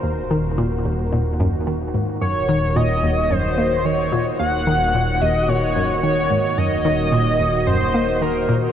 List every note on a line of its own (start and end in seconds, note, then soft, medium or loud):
0.00 2.19 D#1 medium
0.00 0.22 D#2 medium
0.00 8.72 D#3 medium
0.00 8.72 A#3 medium
0.00 8.72 F#4 medium
0.31 0.43 D#3 loud
0.58 0.70 A#2 loud
0.85 0.92 D#2 medium
1.12 1.20 A#2 medium
1.40 1.47 F#2 loud
1.67 1.74 D#3 medium
1.94 2.07 G#2 medium
2.21 4.37 D#1 medium
2.21 2.40 F#2 medium
2.21 2.77 C#5 loud
2.49 2.61 D#3 loud
2.76 2.88 A#2 loud
2.76 3.32 D#5 loud
3.03 3.11 D#2 medium
3.31 3.49 F#2 medium
3.31 3.86 C5 loud
3.58 3.70 A#3 medium
3.85 3.93 D#3 medium
3.85 4.26 C#5 loud
4.12 4.31 A#2 loud
4.40 6.55 D#1 medium
4.40 4.58 D#2 medium
4.40 5.23 F#5 loud
4.67 4.79 D#3 loud
4.94 5.07 A#2 loud
5.21 5.29 D#2 medium
5.21 5.50 D#5 loud
5.49 5.56 A#2 medium
5.49 6.02 C#5 loud
5.76 5.83 F#2 loud
6.03 6.11 D#3 medium
6.03 6.59 C#5 loud
6.31 6.43 G#2 medium
6.58 8.72 D#1 medium
6.58 6.76 F#2 medium
6.58 7.66 D#5 loud
6.85 6.97 D#3 loud
7.12 7.25 A#2 loud
7.40 7.47 D#2 medium
7.67 7.85 F#2 medium
7.67 8.23 C5 loud
7.94 8.06 A#3 medium
8.21 8.29 D#3 medium
8.21 8.62 A#4 medium
8.49 8.67 A#2 loud